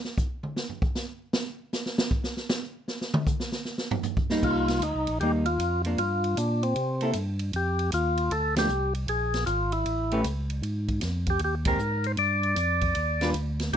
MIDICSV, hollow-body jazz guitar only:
0, 0, Header, 1, 2, 480
1, 0, Start_track
1, 0, Key_signature, -3, "minor"
1, 0, Tempo, 387347
1, 1654, Time_signature, 4, 2, 24, 8
1, 17061, End_track
2, 0, Start_track
2, 0, Title_t, "Hollow-body jazz guitar"
2, 0, Program_c, 0, 26
2, 5336, Note_on_c, 0, 55, 60
2, 5342, Note_on_c, 0, 58, 70
2, 5348, Note_on_c, 0, 63, 85
2, 5943, Note_off_c, 0, 55, 0
2, 5945, Note_off_c, 0, 58, 0
2, 5948, Note_off_c, 0, 63, 0
2, 6469, Note_on_c, 0, 55, 54
2, 6478, Note_on_c, 0, 58, 59
2, 6478, Note_on_c, 0, 63, 57
2, 6744, Note_off_c, 0, 55, 0
2, 6748, Note_off_c, 0, 58, 0
2, 6749, Note_off_c, 0, 63, 0
2, 7261, Note_on_c, 0, 53, 53
2, 7265, Note_on_c, 0, 58, 56
2, 7271, Note_on_c, 0, 62, 59
2, 7401, Note_off_c, 0, 53, 0
2, 7403, Note_off_c, 0, 58, 0
2, 7407, Note_off_c, 0, 62, 0
2, 8698, Note_on_c, 0, 58, 56
2, 8708, Note_on_c, 0, 69, 61
2, 8709, Note_on_c, 0, 64, 56
2, 8840, Note_off_c, 0, 58, 0
2, 8845, Note_off_c, 0, 69, 0
2, 8846, Note_off_c, 0, 64, 0
2, 10609, Note_on_c, 0, 53, 51
2, 10619, Note_on_c, 0, 57, 48
2, 10620, Note_on_c, 0, 62, 48
2, 10622, Note_on_c, 0, 67, 45
2, 10756, Note_off_c, 0, 53, 0
2, 10761, Note_off_c, 0, 57, 0
2, 10762, Note_off_c, 0, 62, 0
2, 10763, Note_off_c, 0, 67, 0
2, 12544, Note_on_c, 0, 57, 70
2, 12546, Note_on_c, 0, 61, 56
2, 12546, Note_on_c, 0, 67, 59
2, 12554, Note_on_c, 0, 71, 72
2, 12684, Note_off_c, 0, 57, 0
2, 12685, Note_off_c, 0, 61, 0
2, 12685, Note_off_c, 0, 67, 0
2, 12689, Note_off_c, 0, 71, 0
2, 14452, Note_on_c, 0, 56, 47
2, 14463, Note_on_c, 0, 60, 56
2, 14466, Note_on_c, 0, 70, 56
2, 14467, Note_on_c, 0, 67, 58
2, 14598, Note_off_c, 0, 56, 0
2, 14603, Note_off_c, 0, 60, 0
2, 14605, Note_off_c, 0, 70, 0
2, 14606, Note_off_c, 0, 67, 0
2, 16376, Note_on_c, 0, 55, 55
2, 16376, Note_on_c, 0, 62, 60
2, 16380, Note_on_c, 0, 65, 61
2, 16388, Note_on_c, 0, 71, 64
2, 16520, Note_off_c, 0, 55, 0
2, 16520, Note_off_c, 0, 62, 0
2, 16522, Note_off_c, 0, 65, 0
2, 16526, Note_off_c, 0, 71, 0
2, 17061, End_track
0, 0, End_of_file